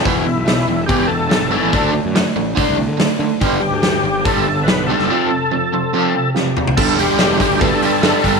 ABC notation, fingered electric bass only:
X:1
M:4/4
L:1/16
Q:1/4=143
K:G
V:1 name="Fingered electric bass" clef=bass
E,,,2 z B,,,3 E,,,2 z E,,,3 G,,,3 A,,, | D,,3 F,,2 z A,,,2 z C,,2 D,2 z D, z | G,,,2 z D,,3 G,,,2 z G,,,3 B,,,3 F,,, | z16 |
G,,, z E,,, z E,,,3 D,,2 z3 G,,, z G,,,2 |]